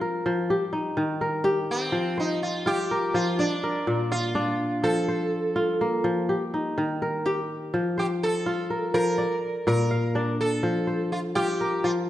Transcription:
Already playing: F3 D4 F4 C5
0.01 A#4
0.26 F3
0.50 G4
0.73 D#4
0.97 D#3
1.21 A#4
1.44 G4
1.71 C4
1.92 F3
2.18 D#4 C5
2.43 F4
2.66 F4 G4
2.91 A#4
3.14 F3 F4
3.39 D4 D5
3.64 A#4
3.87 A#2
4.12 F4 F5
4.35 D4 D5
4.83 F3 A4
5.08 C5
5.56 F4
5.81 A#3
6.04 F3
6.29 G4
6.54 D#4
6.78 D#3
7.02 A#4
7.26 G4
7.74 F3
7.98 G4 C5
8.23 A4
8.46 F4
8.70 A#4
8.94 F3 A#4
9.18 D5
9.67 A#2 A#4
9.91 F5
10.15 D4 D5
10.41 A4
10.63 F3
10.87 C5
11.12 F4
11.35 F4 G4
11.61 A#4
11.84 F3 F4

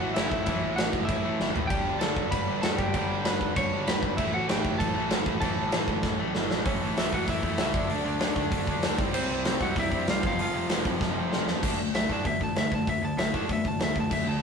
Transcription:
Already playing: A2 E3 A3 F#4 F#5
0.00 A1 A2 E3 A3
0.14 G1 A2 E3 E4 E5, snare, crash
0.19 A3
0.29 A1 E4 E5, kick
0.44 A1 A2 E3 E4 E5, kick, crash
0.50 A3
0.62 A1
0.76 A1 F#4 F#5, snare, crash
0.93 G1, kick
1.05 E4 E5, kick, crash
1.09 A1
1.24 A1 A2 E3 A3
1.40 G1 A2 E3 A3, snare
1.55 A1, floor tom
1.67 G1 G2 G4 G5, kick, crash
1.72 D3 G3
1.85 G1
1.99 G1 A4 A5, snare, crash
2.16 E1, kick
2.31 G1 B4 B5, kick, crash
2.47 G1 G2 D3 G3
2.62 E1 G2 D3 G3 A4 A5, snare, crash
2.76 G1 G4 G5, kick
2.94 G1 G2 D3 G3, kick, crash
3.10 G1
3.25 G1 B4 B5, snare, crash
3.41 E1, kick
3.56 G1 C#5 C#6, kick, crash
3.72 G1 G2 D3 G3
3.87 E1 G2 D3 G3 B4 B5, snare, crash
4.03 G1, kick
4.17 A1 A2 E3 A3 E4 E5, kick, crash
4.33 A1 F#4 F#5
4.48 A1 G4 G5, snare, crash
4.65 G1, kick
4.79 A1 A4 A5, kick, crash
4.95 A1 A2 E3 A3
5.10 G1 A2 E3 A3, snare, crash
5.26 A1, kick
5.41 A1 A2 E3 A3 A4 A5, kick, crash
5.57 A1
5.72 A1, snare, crash
5.87 G1, kick
6.03 A1, kick, snare
6.19 A1 A2 E3 A3
6.34 G1 A2 E3 A3, snare
6.50 A1, snare
6.66 A1 A2 E3 A3 C#4 C#5, kick, open hi-hat
6.81 A1 A2 E3 A3
6.97 A1 A2 E3 A3 E4 E5, snare, open hi-hat
7.12 A1 A2 E3 A3 F#4 F#5, kick
7.28 A1 A2 E3 A3 E4 E5, kick, open hi-hat
7.43 E2 A2 E3 A3, kick
7.58 C#2 A2 E3 A3 E4 E5, snare, open hi-hat
7.74 D2 D3 A3 D4, kick
7.89 D2 D3 A3 D4 D5, open hi-hat
8.04 D2 D3 A3 D4
8.20 D2 D3 A3 D4, snare, open hi-hat
8.36 D2 D3 A3 D4, kick
8.51 D2 D3 A3 D4, kick, open hi-hat
8.67 D2 D3 A3 D4, kick
8.82 D2 D3 A3 D4, snare, open hi-hat
8.98 C2 C3 G3 C4, kick
9.13 C2 C3 G3 C4 C5, crash
9.30 C2 C3 G3 C4
9.45 C2 C3 G3 C4, snare, open hi-hat
9.61 C2 C3 G3 C4 F#4 F#5, kick
9.76 C2 C3 G3 C4 E5, kick, open hi-hat
9.80 E4
9.92 G2 C3 G3 C4, kick
10.07 C2 C3 G3 C4 F4, snare, open hi-hat
10.11 F5
10.23 F1 F2 C3 F3 F4 F5, kick
10.39 F1 F2 C3 F3 F4 F5, open hi-hat
10.54 F1 F2 C3 F3
10.69 F1 F2 C3 F3, snare, open hi-hat
10.85 F1 F2 C3 F3, kick
11.01 F1 F2 C3 F3, kick, snare
11.16 F1 F2 C3 F3
11.33 F1 F2 C3 F3, snare
11.47 E2 F2 C3 F3, snare
11.63 D2 D3 A3 D4, kick, crash
11.78 D2 D3 A3
11.93 B1 D3 A3 E5, snare, open hi-hat
12.10 A2 D3 A3 D4 A5, kick
12.25 B2 D3 A3 E5, kick, open hi-hat
12.40 A1 D3 A3 A5, kick
12.56 D2 D3 A3 E5, snare, open hi-hat
12.72 D2 D3 A3 A5, kick
12.87 D2 D3 A3 E5, kick, open hi-hat
13.01 D2 D3 A3 A5
13.17 B1 D3 A3 E5, snare, open hi-hat
13.34 A2 D3 A3 D4 A5, kick
13.49 B2 D3 A3 E5, kick, open hi-hat
13.65 A1 D3 A3 A5, kick
13.80 D2 D3 A3 E5, snare, open hi-hat
13.96 D2 D3 A3, kick
14.00 A5
14.11 D2 D3 A3 E5, kick, crash
14.27 D2 D3 A3 A5
14.38 D3 A3

